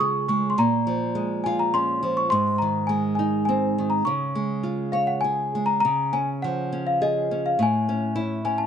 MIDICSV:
0, 0, Header, 1, 3, 480
1, 0, Start_track
1, 0, Key_signature, -5, "major"
1, 0, Tempo, 575264
1, 476, Time_signature, 3, 2, 24, 8
1, 2397, Tempo, 592885
1, 5277, Tempo, 578035
1, 7136, End_track
2, 0, Start_track
2, 0, Title_t, "Celesta"
2, 0, Program_c, 0, 8
2, 0, Note_on_c, 0, 85, 89
2, 228, Note_off_c, 0, 85, 0
2, 238, Note_on_c, 0, 85, 73
2, 416, Note_on_c, 0, 84, 63
2, 425, Note_off_c, 0, 85, 0
2, 474, Note_off_c, 0, 84, 0
2, 489, Note_on_c, 0, 82, 88
2, 1200, Note_on_c, 0, 80, 69
2, 1223, Note_off_c, 0, 82, 0
2, 1322, Note_off_c, 0, 80, 0
2, 1331, Note_on_c, 0, 82, 72
2, 1448, Note_off_c, 0, 82, 0
2, 1450, Note_on_c, 0, 84, 87
2, 1810, Note_on_c, 0, 85, 80
2, 1815, Note_off_c, 0, 84, 0
2, 1861, Note_off_c, 0, 85, 0
2, 1920, Note_on_c, 0, 84, 96
2, 2141, Note_off_c, 0, 84, 0
2, 2156, Note_on_c, 0, 82, 72
2, 2394, Note_on_c, 0, 80, 70
2, 2405, Note_off_c, 0, 82, 0
2, 2501, Note_off_c, 0, 80, 0
2, 2624, Note_on_c, 0, 80, 62
2, 2857, Note_off_c, 0, 80, 0
2, 2867, Note_on_c, 0, 80, 70
2, 3227, Note_on_c, 0, 82, 72
2, 3236, Note_off_c, 0, 80, 0
2, 3338, Note_off_c, 0, 82, 0
2, 3350, Note_on_c, 0, 85, 75
2, 4056, Note_on_c, 0, 77, 68
2, 4177, Note_on_c, 0, 78, 65
2, 4185, Note_off_c, 0, 77, 0
2, 4278, Note_off_c, 0, 85, 0
2, 4287, Note_on_c, 0, 80, 83
2, 4308, Note_off_c, 0, 78, 0
2, 4639, Note_off_c, 0, 80, 0
2, 4653, Note_on_c, 0, 82, 79
2, 4713, Note_off_c, 0, 82, 0
2, 4770, Note_on_c, 0, 82, 98
2, 5032, Note_off_c, 0, 82, 0
2, 5034, Note_on_c, 0, 80, 75
2, 5143, Note_off_c, 0, 80, 0
2, 5272, Note_on_c, 0, 78, 73
2, 5615, Note_off_c, 0, 78, 0
2, 5639, Note_on_c, 0, 77, 67
2, 5695, Note_off_c, 0, 77, 0
2, 5767, Note_on_c, 0, 75, 77
2, 6130, Note_on_c, 0, 77, 65
2, 6138, Note_off_c, 0, 75, 0
2, 6240, Note_off_c, 0, 77, 0
2, 6271, Note_on_c, 0, 80, 81
2, 6701, Note_off_c, 0, 80, 0
2, 6956, Note_on_c, 0, 80, 77
2, 7064, Note_on_c, 0, 81, 75
2, 7080, Note_off_c, 0, 80, 0
2, 7136, Note_off_c, 0, 81, 0
2, 7136, End_track
3, 0, Start_track
3, 0, Title_t, "Nylon-string guitar"
3, 0, Program_c, 1, 24
3, 0, Note_on_c, 1, 49, 57
3, 0, Note_on_c, 1, 56, 49
3, 0, Note_on_c, 1, 65, 47
3, 0, Note_on_c, 1, 73, 49
3, 3, Note_on_c, 1, 68, 51
3, 213, Note_off_c, 1, 56, 0
3, 241, Note_on_c, 1, 56, 46
3, 444, Note_off_c, 1, 65, 0
3, 449, Note_off_c, 1, 49, 0
3, 458, Note_off_c, 1, 73, 0
3, 464, Note_off_c, 1, 68, 0
3, 470, Note_off_c, 1, 56, 0
3, 483, Note_on_c, 1, 46, 60
3, 724, Note_on_c, 1, 53, 49
3, 960, Note_on_c, 1, 56, 51
3, 1218, Note_on_c, 1, 65, 58
3, 1455, Note_on_c, 1, 61, 56
3, 1654, Note_off_c, 1, 53, 0
3, 1691, Note_on_c, 1, 53, 51
3, 1887, Note_off_c, 1, 46, 0
3, 1891, Note_off_c, 1, 56, 0
3, 1907, Note_off_c, 1, 65, 0
3, 1911, Note_off_c, 1, 61, 0
3, 1916, Note_off_c, 1, 53, 0
3, 1934, Note_on_c, 1, 44, 66
3, 2185, Note_on_c, 1, 51, 49
3, 2412, Note_on_c, 1, 56, 47
3, 2654, Note_on_c, 1, 63, 51
3, 2894, Note_on_c, 1, 60, 54
3, 3095, Note_off_c, 1, 51, 0
3, 3135, Note_on_c, 1, 51, 45
3, 3322, Note_off_c, 1, 44, 0
3, 3325, Note_off_c, 1, 56, 0
3, 3335, Note_off_c, 1, 63, 0
3, 3343, Note_off_c, 1, 60, 0
3, 3352, Note_off_c, 1, 51, 0
3, 3364, Note_on_c, 1, 49, 61
3, 3596, Note_on_c, 1, 56, 50
3, 3823, Note_on_c, 1, 65, 44
3, 4062, Note_on_c, 1, 73, 51
3, 4312, Note_off_c, 1, 73, 0
3, 4316, Note_on_c, 1, 68, 47
3, 4531, Note_off_c, 1, 56, 0
3, 4564, Note_on_c, 1, 56, 47
3, 4769, Note_off_c, 1, 65, 0
3, 4774, Note_off_c, 1, 49, 0
3, 4787, Note_off_c, 1, 68, 0
3, 4795, Note_off_c, 1, 56, 0
3, 4806, Note_on_c, 1, 49, 55
3, 5033, Note_on_c, 1, 61, 50
3, 5287, Note_on_c, 1, 53, 50
3, 5512, Note_off_c, 1, 61, 0
3, 5522, Note_on_c, 1, 61, 49
3, 5764, Note_on_c, 1, 68, 46
3, 6000, Note_off_c, 1, 61, 0
3, 6010, Note_on_c, 1, 61, 47
3, 6217, Note_off_c, 1, 49, 0
3, 6222, Note_off_c, 1, 53, 0
3, 6231, Note_off_c, 1, 68, 0
3, 6239, Note_on_c, 1, 45, 61
3, 6241, Note_off_c, 1, 61, 0
3, 6487, Note_on_c, 1, 61, 50
3, 6710, Note_on_c, 1, 64, 52
3, 6942, Note_off_c, 1, 61, 0
3, 6952, Note_on_c, 1, 61, 50
3, 7136, Note_off_c, 1, 45, 0
3, 7136, Note_off_c, 1, 61, 0
3, 7136, Note_off_c, 1, 64, 0
3, 7136, End_track
0, 0, End_of_file